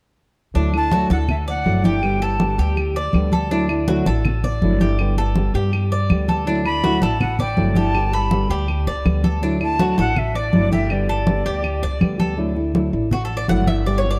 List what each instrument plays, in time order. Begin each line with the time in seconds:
0.54 upright bass D2, nylon-string guitar D3 F#3 A3 D4 E4, cuban tres D4, high conga
0.73 nylon-string guitar A3 D4 E4, high conga, claves
0.77 flute A5
0.92 nylon-string guitar D3 F#3 A3 D4 E4, cuban tres F#4, high conga
1.10 upright bass D2, nylon-string guitar A3 D4 E4, cuban tres A4, flute F#5, high conga
1.28 flute E5, muted nylon-string guitar stroke, high conga, low conga, claves
1.47 cuban tres D5, flute F#5, high conga
1.65 upright bass G1, nylon-string guitar D3 F#3 A3 D4 E4, high conga
1.84 nylon-string guitar A3 D4 E4, cuban tres G4, flute G5, high conga
2.02 nylon-string guitar D3 G3 B3 G4, high conga, claves
2.20 nylon-string guitar G3 B3 G4, cuban tres A4, flute A5, high conga
2.39 nylon-string guitar D3 G3 B3 G4, high conga
2.58 upright bass D2, nylon-string guitar G3 B3 G4, cuban tres G4, high conga
2.77 muted nylon-string guitar stroke, high conga, claves
2.95 cuban tres D5, high conga
3.13 upright bass D2, nylon-string guitar D3 G3 B3 G4, high conga, claves
3.32 nylon-string guitar G3 B3 G4, cuban tres A4, high conga
3.50 nylon-string guitar D3 F#3 A3 D4 E4, cuban tres D4, high conga
3.69 nylon-string guitar A3 D4 E4, high conga, claves
3.87 nylon-string guitar D3 F#3 A3 D4 E4, cuban tres F#4, high conga
4.06 upright bass A1, nylon-string guitar A3 D4 E4, cuban tres A4, high conga
4.25 muted nylon-string guitar stroke, high conga, low conga, claves
4.44 cuban tres D5, high conga, low conga
4.62 upright bass G1, nylon-string guitar D3 F#3 A3 D4 E4, high conga
4.80 nylon-string guitar A3 D4 E4, cuban tres G4, high conga
4.99 nylon-string guitar D3 G3 B3 G4, high conga, claves
5.17 nylon-string guitar G3 B3 G4, cuban tres A4, high conga
5.36 nylon-string guitar D3 G3 B3 G4, high conga
5.54 upright bass G2, nylon-string guitar G3 B3 G4, cuban tres G4, high conga
5.73 muted nylon-string guitar stroke, high conga, claves
5.91 cuban tres D5, high conga
6.10 upright bass D2, nylon-string guitar D3 G3 B3 G4, high conga, claves
6.28 nylon-string guitar G3 B3 G4, cuban tres A4, high conga
6.46 nylon-string guitar D3 F#3 A3 D4 E4, cuban tres D4, high conga
6.65 nylon-string guitar A3 D4, flute B5, high conga, claves
6.83 nylon-string guitar D3 F#3 A3 D4 E4, cuban tres F#4, high conga
7.02 upright bass A1, nylon-string guitar A3 D4, cuban tres A4, flute A5, high conga
7.20 flute F#5, muted nylon-string guitar stroke, high conga, low conga, claves
7.39 cuban tres D5, flute G5, high conga, low conga
7.57 upright bass G1, nylon-string guitar D3 F#3 A3 D4 E4, high conga
7.75 nylon-string guitar A3 D4 E4, cuban tres G4, flute A5, high conga
7.94 nylon-string guitar D3 G3 B3 G4, high conga, claves
8.12 nylon-string guitar G3 B3 G4, cuban tres A4, flute B5, high conga
8.31 nylon-string guitar D3 G3 B3 G4, high conga
8.49 upright bass D2, nylon-string guitar G3 B3 G4, cuban tres G4, high conga
8.68 muted nylon-string guitar stroke, high conga, claves
8.87 upright bass C#2, cuban tres D5, high conga
9.05 upright bass D2, nylon-string guitar D3 G3 B3 G4, high conga, claves
9.24 nylon-string guitar G3 B3 G4, cuban tres A4, high conga
9.42 nylon-string guitar D3 F#3 A3 D4 E4, cuban tres D4, high conga
9.60 nylon-string guitar A3 D4 E4, flute A5, high conga, claves
9.79 nylon-string guitar D3 F#3 A3 D4 E4, cuban tres F#4, high conga
9.97 upright bass A1, nylon-string guitar A3 D4 E4, cuban tres A4, flute F#5, high conga
10.15 flute E5, muted nylon-string guitar stroke, high conga, low conga, claves
10.35 cuban tres D5, flute D5, high conga
10.53 upright bass G1, nylon-string guitar D3 F#3 A3 D4 E4, high conga
10.71 nylon-string guitar A3 D4 E4, cuban tres G4, flute E5, high conga
10.90 nylon-string guitar D3 G3 B3 G4, flute D5, high conga, claves
11.09 nylon-string guitar G3 B3 G4, cuban tres A4, high conga
11.27 nylon-string guitar D3 G3 B3 G4, high conga
11.45 upright bass D2, nylon-string guitar G3 B3 G4, cuban tres G4, high conga
11.63 muted nylon-string guitar stroke, high conga, claves
11.83 upright bass C#2, cuban tres D5, high conga
12.00 upright bass D2, nylon-string guitar D3 G3 B3 G4, high conga, claves
12.18 nylon-string guitar G3 B3 G4, cuban tres A4, high conga
12.37 nylon-string guitar D3 F#3 A3 D4 E4, high conga
12.55 nylon-string guitar A3 D4 E4, high conga
12.74 nylon-string guitar D3 F#3 A3 D4 E4, high conga
12.93 upright bass A1, nylon-string guitar A3 D4 E4, high conga
13.11 cuban tres F#4, muted nylon-string guitar stroke, high conga, low conga
13.25 cuban tres A4
13.30 high conga
13.37 cuban tres D5
13.48 upright bass G1, nylon-string guitar D3 F#3 A3 D4 E4, cuban tres F#5, high conga
13.67 nylon-string guitar A3 D4 E4, cuban tres E5, high conga
13.86 nylon-string guitar D3 G3 B3 G4, cuban tres D5, high conga
13.98 cuban tres C#5
14.04 nylon-string guitar G3 B3 G4, high conga
14.11 cuban tres D5